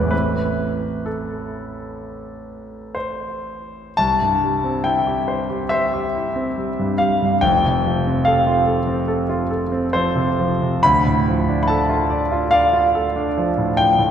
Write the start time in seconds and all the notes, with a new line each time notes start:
Already playing: E2 G#3 B3 E4 B4 D5
0.01 A1
0.08 A3 C4 E4 B4
1.06 A4
2.95 C5
3.97 C2 A5
4.21 G2
4.44 G3
4.64 C4
4.84 E4 G5
5.07 G4
5.28 C5
5.50 G4
5.69 C5 E5
5.93 G4
6.15 E4
6.36 C4
6.57 G3
6.79 G2
6.98 G3 F5
7.22 G2
7.41 F1 F2 G5
7.65 C3
7.86 F3
8.07 C4
8.25 A4 F5
8.47 F4
8.66 A4
8.87 C4
9.08 A4
9.29 F4
9.51 A4
9.72 C4
9.93 F3 C5
10.15 C3
10.40 F3
10.62 C3
10.83 D2 B5
11.06 A2
11.28 F3
11.49 D4
11.63 B5
11.68 A4 A5
11.89 F4
12.10 D5
12.32 F4
12.51 D5 F5
12.73 F4
12.95 A4
13.16 D4
13.38 F3
13.58 A2
13.77 F3 G5
13.98 A2